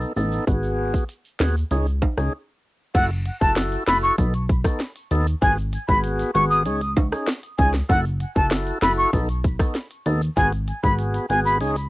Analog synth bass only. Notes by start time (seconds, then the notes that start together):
0.16 A1
0.47 G#1
1.40 D#2
1.71 C#2
2.17 C#2
2.95 F#1
3.41 F#1
3.88 F#1
4.18 B1
5.11 D#2
5.42 G#1
5.89 G#1
6.35 G#1
6.66 C#2
7.59 C#2
7.90 F#1
8.36 F#1
8.82 F#1
9.13 B1
10.06 D#2
10.37 G#1
10.83 G#1
11.30 G#1
11.61 C#2